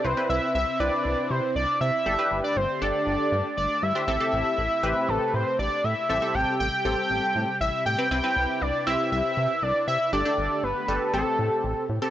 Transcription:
0.00 2.02 C4 medium
0.04 0.15 C2 loud
0.04 2.04 C3 medium
0.04 0.13 C4 medium
0.04 0.13 E4 medium
0.04 2.04 E4 medium
0.04 0.13 B4 medium
0.04 0.29 C5 loud
0.17 0.58 C4 medium
0.17 0.58 E4 medium
0.17 0.58 B4 medium
0.30 0.40 C2 loud
0.30 0.53 E5 medium
0.55 0.65 C2 loud
0.55 0.78 E5 loud
0.80 0.90 C2 medium
0.80 1.45 C4 medium
0.80 1.45 E4 medium
0.80 1.45 B4 medium
0.80 1.32 D5 loud
1.05 1.15 C2 loud
1.30 1.41 C3 loud
1.30 1.55 C5 medium
1.56 1.66 C2 loud
1.56 1.79 D5 loud
1.81 1.91 C3 loud
1.81 2.40 E5 loud
2.06 2.16 G1 loud
2.06 4.06 D3 medium
2.06 4.06 A3 medium
2.06 2.14 D4 medium
2.06 2.14 G4 medium
2.06 8.07 G4 medium
2.06 2.14 A4 medium
2.19 2.60 D4 medium
2.19 2.59 G4 medium
2.19 2.60 B4 medium
2.31 2.41 G1 loud
2.44 2.58 D5 medium
2.56 2.67 G1 loud
2.56 2.83 C5 loud
2.82 2.92 G1 loud
2.82 3.47 D4 medium
2.82 3.47 G4 medium
2.82 3.47 A4 medium
2.82 3.57 D5 loud
3.07 3.17 G1 loud
3.32 3.42 G2 loud
3.57 3.67 G1 loud
3.57 3.84 D5 loud
3.82 3.93 G2 loud
3.82 4.07 E5 loud
3.95 4.03 D4 medium
3.95 4.03 G4 medium
3.95 4.03 C5 medium
4.08 4.18 A1 loud
4.08 10.09 C3 medium
4.08 6.07 A3 medium
4.08 4.16 C4 medium
4.08 4.16 G4 medium
4.08 4.16 A4 medium
4.08 5.10 E5 loud
4.20 4.61 C4 medium
4.20 4.61 G4 medium
4.20 4.61 A4 medium
4.33 4.43 A1 medium
4.58 4.68 A1 medium
4.83 4.93 A1 loud
4.83 5.49 C4 medium
4.83 5.49 G4 medium
4.83 5.49 B4 loud
5.09 5.19 A1 loud
5.09 5.35 A4 loud
5.34 5.44 A2 loud
5.34 5.58 C5 loud
5.59 5.69 A1 loud
5.59 5.86 D5 loud
5.84 5.94 A2 medium
5.84 6.09 E5 loud
6.09 6.20 A1 loud
6.09 8.09 G3 medium
6.09 6.18 C4 medium
6.09 6.18 G4 medium
6.09 6.18 A4 medium
6.09 6.36 E5 loud
6.22 6.63 C4 medium
6.22 6.63 G4 medium
6.22 6.63 A4 medium
6.35 6.45 A1 medium
6.35 6.59 G5 loud
6.60 6.70 A1 medium
6.60 6.83 G5 loud
6.85 6.95 A1 loud
6.85 7.50 C4 medium
6.85 7.50 G4 medium
6.85 7.50 A4 medium
6.85 7.57 G5 loud
7.10 7.20 A1 loud
7.36 7.46 A2 loud
7.61 7.71 A1 loud
7.61 7.84 E5 loud
7.86 7.96 A2 loud
7.86 8.09 G5 loud
7.98 8.07 C4 medium
7.98 8.07 G4 medium
7.98 8.07 B4 medium
8.11 8.21 C2 loud
8.11 8.19 C4 medium
8.11 10.11 E4 medium
8.11 8.19 E4 medium
8.11 10.11 B4 medium
8.11 8.19 B4 medium
8.11 8.63 G5 loud
8.24 8.64 C4 medium
8.24 8.64 E4 medium
8.24 8.64 B4 medium
8.36 8.46 C2 loud
8.61 8.72 C2 loud
8.61 8.86 D5 loud
8.87 8.97 C2 medium
8.87 9.52 C4 medium
8.87 9.52 E4 medium
8.87 9.52 G4 medium
8.87 9.10 E5 loud
9.12 9.22 C2 loud
9.12 9.64 E5 loud
9.37 9.47 C3 loud
9.62 9.73 C2 loud
9.62 9.87 D5 loud
9.88 9.98 C3 loud
9.88 10.11 E5 loud
10.13 10.23 G1 loud
10.13 11.13 D3 medium
10.13 12.10 A3 medium
10.13 10.21 D4 medium
10.13 10.21 G4 medium
10.13 11.12 G4 medium
10.13 10.21 A4 medium
10.13 10.65 D5 loud
10.25 10.66 D4 medium
10.25 10.66 G4 medium
10.25 10.66 A4 medium
10.38 10.48 G1 loud
10.63 10.73 G1 loud
10.63 11.13 B4 loud
10.88 10.99 G1 loud
10.88 11.14 D4 medium
10.88 11.12 G4 medium
10.88 11.12 A4 medium
11.13 11.24 A1 loud
11.13 12.10 C3 medium
11.13 11.84 C4 medium
11.13 11.84 G4 medium
11.13 12.10 G4 medium
11.13 11.84 A4 medium
11.13 11.85 A4 medium
11.39 11.49 A2 medium
11.64 11.74 A1 loud
11.89 11.99 A2 loud
12.02 12.10 C4 medium
12.02 12.10 G4 medium
12.02 12.10 A4 loud

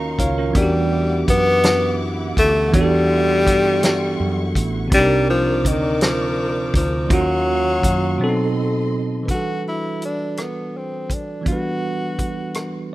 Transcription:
0.00 0.16 D#2 medium
0.00 0.49 D#3 medium
0.00 0.51 A#3 medium
0.00 0.39 C#4 medium
0.00 0.53 D#4 medium
0.00 0.21 F4 medium
0.00 0.57 F#4 medium
0.00 0.18 A#4 medium
0.00 0.53 F5 medium
0.00 0.17 A#5 medium
0.00 0.53 C#6 medium
0.19 0.52 C#2 medium
0.19 0.37 F4 medium
0.19 0.37 C#5 medium
0.19 0.53 F5 medium
0.19 kick medium
0.19 closed hi-hat medium
0.38 0.73 C#4 medium
0.38 0.72 A#4 medium
0.51 2.67 E3 medium
0.51 2.69 B3 medium
0.51 4.87 E4 medium
0.51 4.87 F#5 medium
0.55 1.24 E2 loud
0.55 1.24 G3 medium
0.55 2.70 D4 medium
0.55 2.71 D6 medium
0.55 kick loud
0.55 closed hi-hat medium
0.59 2.71 F#4 medium
0.59 2.73 G4 medium
1.28 2.33 F#2 medium
1.28 1.98 B3 loud
1.28 kick medium
1.28 closed hi-hat medium
1.63 snare loud
1.63 closed hi-hat medium
2.37 2.74 D2 medium
2.37 2.72 A3 loud
2.37 kick medium
2.37 closed hi-hat medium
2.70 4.86 E3 medium
2.70 4.87 B3 medium
2.70 kick loud
2.70 closed hi-hat medium
2.74 3.47 E2 loud
2.74 4.52 G3 loud
2.74 4.89 D4 medium
2.74 4.90 F#4 medium
2.74 4.90 C#6 medium
2.81 4.91 A4 medium
3.47 4.16 G2 medium
3.47 kick medium
3.47 closed hi-hat medium
3.83 snare loud
3.83 closed hi-hat medium
4.20 4.52 F#2 medium
4.55 4.88 A1 medium
4.55 kick medium
4.55 closed hi-hat medium
4.88 7.04 C3 medium
4.88 7.05 C4 medium
4.88 closed hi-hat medium
4.92 5.65 C2 loud
4.92 5.27 G3 loud
4.92 7.07 D4 medium
4.92 7.09 A#4 medium
4.92 7.08 D5 medium
4.92 7.08 D6 medium
4.92 kick loud
4.96 7.08 D#4 medium
4.96 7.09 A#4 medium
5.30 5.69 F3 loud
5.65 6.70 D2 medium
5.65 6.04 D#3 loud
5.65 kick medium
5.65 closed hi-hat medium
6.01 6.74 F3 loud
6.01 snare loud
6.01 closed hi-hat medium
6.74 7.07 D2 medium
6.74 7.15 F3 medium
6.74 kick medium
6.74 closed hi-hat medium
7.08 7.79 D#2 loud
7.08 8.18 D#3 medium
7.08 8.18 F#3 medium
7.08 8.19 A#3 medium
7.08 8.20 C#4 medium
7.08 8.18 F5 medium
7.08 8.18 C#6 medium
7.08 kick loud
7.08 closed hi-hat medium
7.13 8.57 F#3 loud
7.13 8.20 F4 medium
7.13 8.21 F#4 medium
7.83 8.16 F#2 medium
7.83 kick medium
7.83 closed hi-hat medium
8.18 9.28 B2 medium
8.18 9.28 F#3 medium
8.18 9.29 C4 medium
8.18 8.27 D4 medium
8.18 9.27 A4 medium
8.18 9.27 D#5 medium
8.18 9.27 C6 medium
8.24 9.30 A4 medium
8.29 9.33 D#4 medium
9.23 11.40 E3 soft
9.23 11.41 B4 soft
9.28 11.42 D4 soft
9.28 11.43 F#4 soft
9.28 9.63 F#4 medium
9.28 kick medium
9.28 closed hi-hat medium
9.32 11.44 G3 soft
9.32 11.45 A4 medium
9.68 10.00 E4 medium
10.02 10.42 D4 medium
10.02 closed hi-hat medium
10.37 10.79 B3 medium
10.37 cross-stick medium
10.37 closed hi-hat medium
10.77 11.15 C4 medium
11.10 11.47 D4 medium
11.10 kick medium
11.10 closed hi-hat medium
11.41 12.95 E3 medium
11.41 12.95 B3 soft
11.45 12.95 D4 soft
11.45 12.88 F#4 medium
11.45 12.95 F#4 soft
11.45 kick medium
11.45 closed hi-hat medium
11.50 12.95 G3 soft
11.50 12.95 B4 medium
12.19 kick medium
12.19 closed hi-hat medium
12.54 cross-stick medium
12.54 closed hi-hat medium

